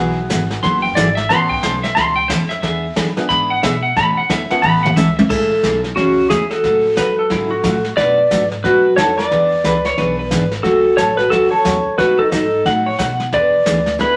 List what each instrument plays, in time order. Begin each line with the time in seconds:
Already playing: upright bass B1, steel-string acoustic guitar E3 F#3 B3 E4 G#4, upright piano B3 E4 F#4 G#4 B4
0.29 upright bass G#1, steel-string acoustic guitar E3 F#3 B3 E4 G#4, kick, snare, hi-hat pedal
0.50 snare
0.63 upright bass F#1, steel-string acoustic guitar E3 F#3 B3 E4 G#4, electric slide guitar C6, brush sweep, kick, snare
0.82 electric slide guitar G5
0.95 upright bass G#1, steel-string acoustic guitar E3 F#3 B3 E4 G#4, electric slide guitar D5, kick, snare, hi-hat pedal
1.15 electric slide guitar E5, snare
1.29 upright bass A1, steel-string acoustic guitar B2 E3 A3 C#4 A4, upright piano B3 C#4 E4 A4 B4, electric slide guitar C6, brush sweep, kick, snare
1.49 electric slide guitar G5, kick
1.63 upright bass B1, steel-string acoustic guitar B2 E3 A3 C#4 A4, electric slide guitar C5, kick, snare, hi-hat pedal
1.83 electric slide guitar E5, snare
1.95 upright bass C#2, steel-string acoustic guitar B2 E3 A3 C#4 A4, electric slide guitar C6, brush sweep, kick, snare
2.16 electric slide guitar G5
2.28 upright bass F2, steel-string acoustic guitar B2 E3 A3 C#4 A4, electric slide guitar C5, kick, snare, hi-hat pedal
2.49 electric slide guitar E5, snare
2.62 upright bass E2, steel-string acoustic guitar E3 B3 D4 G#4, electric slide guitar E5, brush sweep, kick, snare
2.96 upright bass F#2, steel-string acoustic guitar E3 B3 D4 G#4, kick, snare, hi-hat pedal
3.17 upright piano B3 D4 E4 G#4 B4, snare
3.29 upright bass G#2, steel-string acoustic guitar E3 B3 D4 G#4, electric slide guitar B5, brush sweep, kick, snare
3.50 electric slide guitar F#5
3.63 upright bass B2, steel-string acoustic guitar E3 B3 D4 G#4, electric slide guitar E5, kick, snare, hi-hat pedal
3.83 electric slide guitar F#5
3.96 upright bass A2, steel-string acoustic guitar B2 E3 A3 C#4 A4, electric slide guitar B5, brush sweep, kick, snare
4.17 electric slide guitar F#5, muted upright bass stroke
4.30 upright bass E2, steel-string acoustic guitar B2 E3 A3 C#4 A4, electric slide guitar E5, kick, snare, hi-hat pedal
4.50 upright piano B3 C#4 E4 A4 B4, electric slide guitar F#5, muted upright bass stroke, snare
4.62 upright bass A1, steel-string acoustic guitar B2 E3 A3 C#4 A4, electric slide guitar B5, mid tom
4.83 electric slide guitar F#5, mid tom
4.96 upright bass C#2, steel-string acoustic guitar B2 E3 A3 C#4 A4, electric slide guitar E5, hi-hat pedal, high tom
5.17 electric slide guitar E5, high tom
5.29 upright bass A1, steel-string acoustic guitar C#3 E3 A3 C#4 G#4, hollow-body jazz guitar E4, pedal steel guitar A4, brush sweep, kick, snare, crash
5.63 upright bass B1, steel-string acoustic guitar C#3 E3 A3 C#4 G#4, kick, snare, hi-hat pedal
5.84 snare
5.96 upright bass C#2, steel-string acoustic guitar C#3 E3 A3 C#4 G#4, hollow-body jazz guitar C#4, pedal steel guitar F#4, brush sweep, kick, snare
6.29 upright bass E2, steel-string acoustic guitar C#3 E3 A3 C#4 G#4, hollow-body jazz guitar E4, pedal steel guitar G#4, kick, snare, hi-hat pedal
6.51 hollow-body jazz guitar F#4, pedal steel guitar A4, snare
6.63 upright bass A2, steel-string acoustic guitar C#3 F#3 A3 C#4 F#4, brush sweep, kick, snare
6.96 upright bass F#2, steel-string acoustic guitar C#3 F#3 A3 C#4 F#4, electric slide guitar B4, kick, snare, hi-hat pedal
7.19 electric slide guitar A4
7.30 upright bass G#2, steel-string acoustic guitar C#3 F#3 A3 C#4 F#4, electric slide guitar E4, brush sweep, kick, snare
7.51 electric slide guitar F#4
7.63 upright bass A2, steel-string acoustic guitar C#3 F#3 A3 C#4 F#4, electric slide guitar F#4, kick, snare, hi-hat pedal
7.84 snare
7.97 upright bass B2, steel-string acoustic guitar B2 F#3 A3 D4 F#4, hollow-body jazz guitar B4, pedal steel guitar D5, brush sweep, kick, snare
8.31 upright bass G#2, steel-string acoustic guitar B2 F#3 A3 D4 F#4, kick, snare, hi-hat pedal
8.52 snare
8.64 upright bass F#2, steel-string acoustic guitar B2 F#3 A3 D4 F#4, hollow-body jazz guitar F#4, pedal steel guitar B4, brush sweep, kick, snare
8.96 upright bass F2, steel-string acoustic guitar B2 F#3 A3 D4 F#4, hollow-body jazz guitar A4, pedal steel guitar C#5, kick, snare, hi-hat pedal
9.18 hollow-body jazz guitar B4, pedal steel guitar D5, snare
9.31 upright bass E2, steel-string acoustic guitar E3 B3 D4 G#4, brush sweep, kick, snare
9.64 upright bass C#2, steel-string acoustic guitar E3 B3 D4 G#4, electric slide guitar B4, kick, snare, hi-hat pedal
9.85 electric slide guitar C#5, snare
9.98 upright bass B1, steel-string acoustic guitar E3 B3 D4 G#4, electric slide guitar B4, brush sweep, kick, snare
10.19 electric slide guitar B4
10.31 upright bass G#1, steel-string acoustic guitar E3 B3 D4 G#4, kick, snare, hi-hat pedal
10.51 snare
10.63 upright bass F#1, steel-string acoustic guitar C#3 F#3 A3 C#4 F#4, hollow-body jazz guitar F#4, pedal steel guitar A4, brush sweep, kick, snare
10.97 upright bass A1, steel-string acoustic guitar C#3 F#3 A3 C#4 F#4, hollow-body jazz guitar A4, pedal steel guitar C#5, kick, snare, hi-hat pedal
11.17 hollow-body jazz guitar F#4, pedal steel guitar B4, snare
11.30 upright bass C#2, steel-string acoustic guitar C#3 F#3 A3 C#4 F#4, hollow-body jazz guitar F#4, pedal steel guitar A4, brush sweep, kick, snare
11.51 hollow-body jazz guitar A4, pedal steel guitar C#5, muted upright bass stroke
11.65 upright bass E2, steel-string acoustic guitar C#3 F#3 A3 C#4 F#4, kick, snare, hi-hat pedal
11.85 muted upright bass stroke
11.98 upright bass F#2, steel-string acoustic guitar B2 F#3 A3 D#4 F#4, hollow-body jazz guitar F#4, pedal steel guitar B4, brush sweep, kick, snare
12.19 hollow-body jazz guitar D#4, pedal steel guitar A4
12.32 upright bass G#2, steel-string acoustic guitar B2 F#3 A3 D#4 F#4, hollow-body jazz guitar D#4, pedal steel guitar A4, kick, snare, hi-hat pedal
12.65 upright bass A2, steel-string acoustic guitar B2 F#3 A3 D#4 F#4, electric slide guitar F#5, brush sweep, kick, snare
12.86 electric slide guitar C#5
12.98 steel-string acoustic guitar B2 F#3 A3 D#4 F#4, upright bass B2, electric slide guitar F#5, kick, snare, hi-hat pedal
13.20 snare
13.32 upright bass E2, steel-string acoustic guitar E3 B3 D4 G#4, hollow-body jazz guitar B4, pedal steel guitar D5, brush sweep, kick, snare
13.66 upright bass D2, steel-string acoustic guitar E3 B3 D4 G#4, kick, snare, hi-hat pedal
13.86 snare
13.98 upright bass C#2, steel-string acoustic guitar E3 B3 D4 G#4, hollow-body jazz guitar E4, pedal steel guitar B4, brush sweep, kick, snare